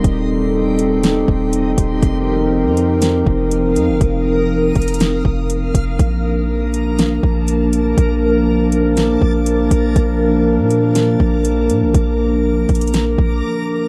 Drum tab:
HH |x-----------x---x-------x---x---|x-----------x---x-------x---x---|x-----------xxxxx-------x---x---|x-----------x---x-------x---x---|
SD |----------------o---------------|----------------o---------------|----------------o---------------|----------------o---------------|
BD |o-------------------o-------o---|o-------------------o-----------|o-----------o-------o-------o---|o-------------------o-----------|

HH |x-----------x---x-------x---x---|x-----------x---x-------x---x---|x-----------xxxxx---------------|
SD |----------------o---------------|----------------o---------------|----------------o---------------|
BD |o-------------------o-------o---|o-------------------o-----------|o-----------o-------o-----------|